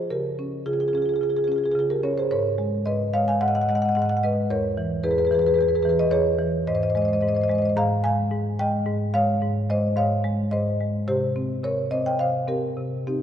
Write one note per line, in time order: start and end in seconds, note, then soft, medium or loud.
0.10 0.65 C#3 medium
0.10 0.62 G4 medium
0.10 0.63 A#4 medium
0.39 0.92 C#4 medium
0.66 1.19 C#3 medium
0.66 0.73 F4 medium
0.66 0.73 G#4 medium
0.73 0.81 F4 medium
0.73 0.80 G#4 medium
0.80 0.89 F4 medium
0.80 0.88 G#4 medium
0.88 0.98 F4 medium
0.88 0.95 G#4 medium
0.93 1.47 C#4 medium
0.93 1.02 G#4 medium
0.98 1.06 F4 medium
1.02 1.14 F4 medium
1.02 1.09 G#4 medium
1.09 1.16 G#4 medium
1.14 1.21 F4 medium
1.14 1.23 G#4 medium
1.21 1.74 C#3 medium
1.21 1.29 F4 medium
1.21 1.30 G#4 medium
1.29 1.38 F4 medium
1.29 1.36 G#4 medium
1.36 1.47 F4 medium
1.36 1.44 G#4 medium
1.44 2.02 C#4 medium
1.44 1.56 F4 medium
1.44 1.52 G#4 medium
1.52 1.58 G#4 medium
1.56 1.64 F4 medium
1.56 1.65 G#4 medium
1.64 1.73 F4 medium
1.64 1.71 G#4 medium
1.71 2.29 C#3 medium
1.71 1.80 F4 medium
1.71 1.79 G#4 medium
1.79 1.86 F4 medium
1.79 1.86 G#4 medium
1.90 2.03 G4 medium
1.90 2.04 A#4 medium
2.03 2.30 C#4 medium
2.03 2.17 A#4 medium
2.03 2.17 C#5 medium
2.18 2.31 G#4 medium
2.18 2.31 C5 medium
2.31 2.84 G#2 medium
2.31 2.83 A#4 medium
2.31 2.84 C#5 loud
2.58 3.13 G#3 medium
2.85 3.40 G#2 medium
2.85 3.12 B4 medium
2.85 3.13 D#5 loud
3.14 3.68 G#3 medium
3.14 3.27 C#5 medium
3.14 3.28 F5 loud
3.28 3.41 F5 medium
3.28 3.42 G#5 loud
3.41 3.95 G#2 medium
3.41 3.48 D#5 medium
3.41 3.48 F#5 loud
3.48 3.56 D#5 medium
3.48 3.55 F#5 medium
3.55 3.63 D#5 medium
3.55 3.61 F#5 loud
3.61 3.71 D#5 medium
3.61 3.69 F#5 medium
3.69 4.22 G#3 medium
3.69 3.77 D#5 medium
3.69 3.75 F#5 loud
3.75 3.85 D#5 medium
3.75 3.82 F#5 loud
3.82 3.92 D#5 medium
3.82 3.89 F#5 loud
3.89 3.99 D#5 medium
3.89 3.95 F#5 loud
3.95 4.49 G#2 medium
3.95 4.05 D#5 medium
3.95 4.02 F#5 loud
4.02 4.12 D#5 medium
4.02 4.09 F#5 medium
4.09 4.20 D#5 medium
4.09 4.17 F#5 loud
4.17 4.21 F#5 medium
4.23 4.50 G#3 medium
4.23 4.49 B4 medium
4.23 4.50 D#5 loud
4.50 5.02 E2 medium
4.50 5.01 A#4 medium
4.50 5.02 C#5 loud
4.77 5.30 E3 medium
5.04 5.57 E2 medium
5.04 5.11 G#4 medium
5.04 5.11 B4 loud
5.11 5.19 G#4 medium
5.11 5.18 B4 medium
5.18 5.27 G#4 medium
5.18 5.25 B4 medium
5.25 5.34 G#4 medium
5.25 5.32 B4 medium
5.31 5.84 E3 medium
5.31 5.42 G#4 medium
5.31 5.39 B4 medium
5.39 5.48 G#4 medium
5.39 5.46 B4 medium
5.46 5.55 G#4 medium
5.46 5.54 B4 medium
5.54 5.62 G#4 medium
5.54 5.61 B4 medium
5.58 6.10 E2 medium
5.58 5.69 G#4 medium
5.58 5.68 B4 medium
5.68 5.76 G#4 medium
5.68 5.75 B4 medium
5.75 5.83 G#4 medium
5.75 5.82 B4 medium
5.82 6.37 E3 medium
5.82 5.91 G#4 medium
5.82 5.89 B4 medium
5.89 5.95 G#4 medium
5.89 5.95 B4 medium
5.99 6.13 B4 medium
5.99 6.13 D#5 loud
6.11 6.65 E2 medium
6.11 6.64 G#4 medium
6.11 6.64 C#5 loud
6.39 6.66 E3 medium
6.67 7.22 G#2 loud
6.67 6.75 C5 medium
6.67 6.75 D#5 loud
6.75 6.82 C5 medium
6.75 6.83 D#5 medium
6.82 6.90 C5 medium
6.82 6.90 D#5 medium
6.90 6.96 C5 medium
6.90 6.97 D#5 medium
6.95 7.48 G#3 medium
6.95 7.02 C5 medium
6.95 7.05 D#5 medium
7.02 7.08 C5 medium
7.02 7.13 D#5 medium
7.08 7.15 C5 medium
7.13 7.22 C5 medium
7.13 7.21 D#5 medium
7.21 7.75 G#2 medium
7.21 7.28 C5 medium
7.21 7.29 D#5 medium
7.28 7.35 C5 medium
7.28 7.36 D#5 medium
7.35 7.41 C5 medium
7.35 7.44 D#5 medium
7.41 7.48 C5 medium
7.41 7.51 D#5 medium
7.48 7.76 G#3 medium
7.48 7.55 C5 medium
7.48 7.58 D#5 medium
7.55 7.62 C5 medium
7.55 7.66 D#5 medium
7.62 7.69 C5 medium
7.62 7.72 D#5 medium
7.69 7.73 C5 medium
7.77 8.31 G#2 loud
7.77 8.03 F5 loud
7.77 8.03 A#5 loud
8.04 8.58 G#3 medium
8.04 8.55 F5 medium
8.04 8.56 G#5 loud
8.32 8.84 G#2 medium
8.59 8.85 G#3 medium
8.59 9.10 D#5 medium
8.59 9.11 G5 loud
8.86 9.40 G#2 medium
9.14 9.68 G#3 medium
9.14 9.65 C#5 medium
9.14 9.66 F5 loud
9.41 9.95 G#2 medium
9.70 10.23 G#3 medium
9.70 9.95 C5 medium
9.70 9.95 D#5 loud
9.96 10.50 G#2 medium
9.96 10.48 C#5 medium
9.96 10.49 F5 loud
10.24 10.79 G#3 medium
10.51 11.06 G#2 medium
10.51 10.78 C5 medium
10.51 10.78 D#5 loud
10.80 11.07 G#3 medium
11.08 11.63 C3 medium
11.08 11.60 G4 medium
11.08 11.61 C5 loud
11.36 11.90 C4 medium
11.64 12.18 C3 medium
11.64 11.90 A#4 medium
11.64 11.90 C#5 loud
11.91 12.46 C4 medium
11.91 12.04 C5 medium
11.91 12.05 D#5 loud
12.06 12.19 D#5 medium
12.06 12.20 G5 loud
12.19 12.75 C3 medium
12.19 12.47 C5 medium
12.19 12.47 F5 loud
12.48 13.06 C4 medium
12.48 13.04 G4 medium
12.48 13.05 A#4 medium
12.77 13.22 C3 medium
13.07 13.22 C4 medium
13.07 13.22 D#4 medium
13.07 13.22 G4 medium